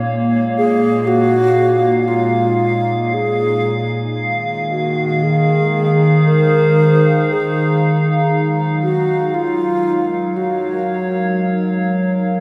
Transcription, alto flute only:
0.58 G#4
1.07 F#4
2.08 F4
3.14 G#4
4.71 F#4
5.23 G#4
6.27 A#4
7.33 G#4
8.83 F#4
9.34 F4
10.36 F#4

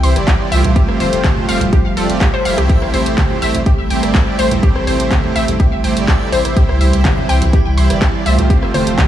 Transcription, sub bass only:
0.03 C2
0.16 G1
0.52 C2
0.64 C2
0.89 F1
1.00 F1
1.13 F1
1.49 F1
1.61 F1
1.85 F1
1.97 F1
2.10 F1
2.45 F1
2.58 C2
2.82 A1
2.94 A1
3.06 A1
3.42 A1
3.55 A1
3.79 A1
3.91 A1
4.03 G1
4.39 A1
4.51 A1
4.76 A1
4.87 A1
5.00 A1
5.36 A1
5.48 A1
5.72 A1
5.84 A1
5.97 G1
6.32 A1
6.45 A1
6.69 C2
6.81 C2
6.93 C2
7.29 C2
7.42 C2
7.66 C2
7.78 C2
7.90 G1
8.26 C2
8.39 C2
8.63 F1
8.74 F1
8.87 F1

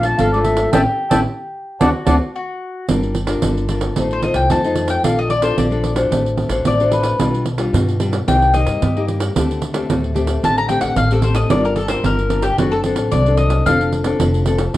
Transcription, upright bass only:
Already playing: A#1
0.19 G#1
0.73 A1
1.12 A1
1.81 D2
2.07 D2
2.89 G1
3.43 G1
3.97 A1
4.34 C2
4.50 F2
5.03 A#1
5.58 A#1
6.11 A1
6.49 A1
6.65 A1
7.19 B1
7.73 G2
8.28 C2
8.67 G2
8.82 G2
9.36 D2
9.90 D2
10.43 A1
10.81 A1
10.96 A1
11.50 G1
12.04 G1
12.58 F#1
12.96 A1
13.12 C2
13.66 F1
14.20 F1
14.74 G1

